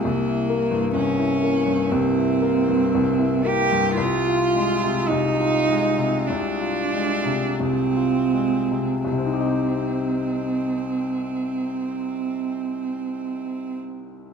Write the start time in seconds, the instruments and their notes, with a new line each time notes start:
0.03 grand piano C2, cello A#3
0.27 grand piano E4
0.50 grand piano A#3
0.71 grand piano G2
0.95 grand piano C2, cello C#4
1.19 grand piano E4
1.43 grand piano A#3
1.66 grand piano G2
1.91 grand piano C2, cello C4
2.17 grand piano E4
2.42 grand piano A#3
2.68 grand piano G2
2.95 grand piano C2
3.19 grand piano E4
3.45 grand piano A#3, cello G4
3.72 grand piano G2
3.97 grand piano C2, cello F4
4.27 grand piano F4
4.55 grand piano G#3
4.83 grand piano C3
5.08 grand piano C2, cello D#4
5.39 grand piano F4
5.69 grand piano G#3
5.98 grand piano C3
6.28 grand piano C2, cello D4
6.60 grand piano F4
6.93 grand piano G#3
7.25 grand piano C3
7.59 grand piano C2, cello C4
7.96 grand piano F4
8.33 grand piano G#3
8.71 grand piano C3
9.04 grand piano C2, cello C4
9.12 grand piano C3
9.19 grand piano C4
9.26 grand piano D#4
9.33 grand piano G4
9.40 grand piano D#5